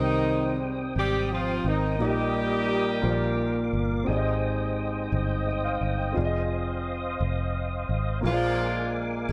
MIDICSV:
0, 0, Header, 1, 6, 480
1, 0, Start_track
1, 0, Tempo, 694444
1, 1375, Time_signature, 6, 3, 24, 8
1, 6443, End_track
2, 0, Start_track
2, 0, Title_t, "Tonewheel organ"
2, 0, Program_c, 0, 16
2, 0, Note_on_c, 0, 60, 53
2, 0, Note_on_c, 0, 79, 47
2, 0, Note_on_c, 0, 87, 62
2, 1353, Note_off_c, 0, 60, 0
2, 1380, Note_on_c, 0, 70, 55
2, 1380, Note_on_c, 0, 75, 47
2, 2076, Note_off_c, 0, 87, 0
2, 2079, Note_off_c, 0, 79, 0
2, 2090, Note_off_c, 0, 75, 0
2, 2094, Note_on_c, 0, 77, 39
2, 2103, Note_on_c, 0, 86, 53
2, 2803, Note_off_c, 0, 70, 0
2, 2808, Note_off_c, 0, 77, 0
2, 2809, Note_on_c, 0, 75, 51
2, 2810, Note_on_c, 0, 72, 58
2, 2811, Note_on_c, 0, 79, 44
2, 2811, Note_on_c, 0, 87, 52
2, 2812, Note_off_c, 0, 86, 0
2, 4239, Note_off_c, 0, 72, 0
2, 4239, Note_off_c, 0, 79, 0
2, 4256, Note_on_c, 0, 72, 51
2, 4258, Note_on_c, 0, 77, 52
2, 5665, Note_off_c, 0, 75, 0
2, 5667, Note_off_c, 0, 87, 0
2, 5682, Note_off_c, 0, 72, 0
2, 5683, Note_off_c, 0, 77, 0
2, 5695, Note_on_c, 0, 86, 64
2, 5698, Note_on_c, 0, 70, 53
2, 5698, Note_on_c, 0, 80, 45
2, 5700, Note_on_c, 0, 77, 51
2, 6443, Note_off_c, 0, 70, 0
2, 6443, Note_off_c, 0, 77, 0
2, 6443, Note_off_c, 0, 80, 0
2, 6443, Note_off_c, 0, 86, 0
2, 6443, End_track
3, 0, Start_track
3, 0, Title_t, "Grand piano"
3, 0, Program_c, 1, 0
3, 0, Note_on_c, 1, 48, 48
3, 0, Note_on_c, 1, 60, 52
3, 0, Note_on_c, 1, 63, 51
3, 0, Note_on_c, 1, 67, 49
3, 2, Note_on_c, 1, 72, 58
3, 51, Control_c, 1, 64, 127
3, 629, Note_off_c, 1, 48, 0
3, 1337, Note_off_c, 1, 60, 0
3, 1343, Note_off_c, 1, 63, 0
3, 1351, Note_off_c, 1, 67, 0
3, 1371, Note_on_c, 1, 58, 56
3, 1380, Note_on_c, 1, 63, 52
3, 1381, Note_off_c, 1, 72, 0
3, 1383, Note_on_c, 1, 46, 50
3, 1386, Control_c, 1, 64, 0
3, 1387, Note_on_c, 1, 67, 48
3, 1393, Note_on_c, 1, 74, 43
3, 1429, Note_off_c, 1, 74, 0
3, 1441, Note_on_c, 1, 75, 53
3, 1486, Control_c, 1, 64, 127
3, 2071, Note_off_c, 1, 46, 0
3, 2071, Note_off_c, 1, 58, 0
3, 2082, Note_on_c, 1, 58, 59
3, 2089, Note_on_c, 1, 65, 58
3, 2093, Note_on_c, 1, 46, 59
3, 2097, Note_on_c, 1, 70, 57
3, 2098, Note_off_c, 1, 63, 0
3, 2101, Note_off_c, 1, 67, 0
3, 2101, Note_on_c, 1, 72, 53
3, 2104, Control_c, 1, 64, 0
3, 2128, Note_off_c, 1, 75, 0
3, 2143, Note_off_c, 1, 72, 0
3, 2146, Note_on_c, 1, 74, 63
3, 2211, Control_c, 1, 64, 127
3, 2787, Note_off_c, 1, 46, 0
3, 2793, Note_on_c, 1, 60, 61
3, 2809, Note_off_c, 1, 58, 0
3, 2809, Note_on_c, 1, 67, 55
3, 2812, Note_off_c, 1, 65, 0
3, 2816, Note_off_c, 1, 70, 0
3, 2817, Note_on_c, 1, 44, 59
3, 2822, Note_off_c, 1, 74, 0
3, 2822, Note_on_c, 1, 68, 61
3, 2825, Control_c, 1, 64, 0
3, 2832, Note_on_c, 1, 74, 55
3, 2869, Note_off_c, 1, 74, 0
3, 2881, Note_on_c, 1, 75, 69
3, 2937, Control_c, 1, 64, 127
3, 3509, Note_off_c, 1, 44, 0
3, 3767, Note_off_c, 1, 75, 0
3, 3778, Note_on_c, 1, 75, 52
3, 3891, Note_off_c, 1, 75, 0
3, 3900, Note_on_c, 1, 77, 56
3, 4126, Note_off_c, 1, 77, 0
3, 4135, Note_on_c, 1, 79, 48
3, 4217, Note_off_c, 1, 60, 0
3, 4225, Note_off_c, 1, 67, 0
3, 4231, Note_off_c, 1, 68, 0
3, 4233, Note_on_c, 1, 60, 58
3, 4245, Note_on_c, 1, 65, 53
3, 4257, Note_on_c, 1, 68, 54
3, 4264, Control_c, 1, 64, 0
3, 4270, Note_on_c, 1, 74, 51
3, 4308, Note_off_c, 1, 74, 0
3, 4319, Note_on_c, 1, 75, 72
3, 4363, Note_off_c, 1, 79, 0
3, 4374, Control_c, 1, 64, 127
3, 5657, Note_off_c, 1, 60, 0
3, 5663, Note_off_c, 1, 65, 0
3, 5669, Note_off_c, 1, 68, 0
3, 5674, Note_on_c, 1, 58, 53
3, 5687, Note_on_c, 1, 65, 55
3, 5694, Note_on_c, 1, 46, 56
3, 5700, Note_off_c, 1, 75, 0
3, 5700, Note_on_c, 1, 68, 48
3, 5706, Control_c, 1, 64, 0
3, 5716, Note_on_c, 1, 73, 47
3, 5751, Note_off_c, 1, 73, 0
3, 5759, Note_on_c, 1, 74, 59
3, 5822, Control_c, 1, 64, 127
3, 6387, Note_off_c, 1, 46, 0
3, 6443, Note_off_c, 1, 58, 0
3, 6443, Note_off_c, 1, 65, 0
3, 6443, Note_off_c, 1, 68, 0
3, 6443, Note_off_c, 1, 74, 0
3, 6443, End_track
4, 0, Start_track
4, 0, Title_t, "Horn section"
4, 0, Program_c, 2, 61
4, 0, Note_on_c, 2, 55, 62
4, 0, Note_on_c, 2, 56, 60
4, 0, Note_on_c, 2, 63, 86
4, 390, Note_off_c, 2, 63, 0
4, 632, Note_off_c, 2, 56, 0
4, 634, Note_off_c, 2, 55, 0
4, 677, Note_on_c, 2, 67, 90
4, 890, Note_off_c, 2, 67, 0
4, 920, Note_on_c, 2, 65, 80
4, 1148, Note_off_c, 2, 65, 0
4, 1161, Note_on_c, 2, 63, 70
4, 1372, Note_off_c, 2, 63, 0
4, 1388, Note_on_c, 2, 58, 52
4, 1389, Note_on_c, 2, 63, 56
4, 1391, Note_on_c, 2, 67, 81
4, 2554, Note_off_c, 2, 58, 0
4, 2554, Note_off_c, 2, 63, 0
4, 2556, Note_off_c, 2, 67, 0
4, 5710, Note_on_c, 2, 65, 95
4, 5715, Note_on_c, 2, 62, 64
4, 5718, Note_on_c, 2, 56, 66
4, 6156, Note_off_c, 2, 65, 0
4, 6398, Note_off_c, 2, 62, 0
4, 6400, Note_off_c, 2, 56, 0
4, 6443, End_track
5, 0, Start_track
5, 0, Title_t, "Tenor saxophone"
5, 0, Program_c, 3, 66
5, 0, Note_on_c, 3, 51, 96
5, 397, Note_off_c, 3, 51, 0
5, 684, Note_on_c, 3, 55, 85
5, 912, Note_on_c, 3, 53, 76
5, 922, Note_off_c, 3, 55, 0
5, 1152, Note_on_c, 3, 51, 67
5, 1162, Note_off_c, 3, 53, 0
5, 1384, Note_off_c, 3, 51, 0
5, 1389, Note_on_c, 3, 55, 80
5, 2555, Note_off_c, 3, 55, 0
5, 5710, Note_on_c, 3, 53, 104
5, 6155, Note_off_c, 3, 53, 0
5, 6443, End_track
6, 0, Start_track
6, 0, Title_t, "Fingered electric bass"
6, 0, Program_c, 4, 33
6, 0, Note_on_c, 4, 36, 77
6, 630, Note_off_c, 4, 36, 0
6, 663, Note_on_c, 4, 32, 72
6, 1111, Note_off_c, 4, 32, 0
6, 1136, Note_on_c, 4, 32, 67
6, 1381, Note_off_c, 4, 32, 0
6, 1381, Note_on_c, 4, 34, 89
6, 2071, Note_off_c, 4, 34, 0
6, 2097, Note_on_c, 4, 34, 79
6, 2549, Note_off_c, 4, 34, 0
6, 2578, Note_on_c, 4, 31, 69
6, 2798, Note_off_c, 4, 31, 0
6, 2822, Note_on_c, 4, 32, 70
6, 3511, Note_off_c, 4, 32, 0
6, 3541, Note_on_c, 4, 31, 74
6, 3991, Note_off_c, 4, 31, 0
6, 4016, Note_on_c, 4, 31, 58
6, 4237, Note_off_c, 4, 31, 0
6, 4266, Note_on_c, 4, 29, 81
6, 4954, Note_off_c, 4, 29, 0
6, 4980, Note_on_c, 4, 29, 74
6, 5430, Note_off_c, 4, 29, 0
6, 5453, Note_on_c, 4, 32, 67
6, 5676, Note_off_c, 4, 32, 0
6, 5698, Note_on_c, 4, 34, 76
6, 6390, Note_off_c, 4, 34, 0
6, 6420, Note_on_c, 4, 31, 70
6, 6443, Note_off_c, 4, 31, 0
6, 6443, End_track
0, 0, End_of_file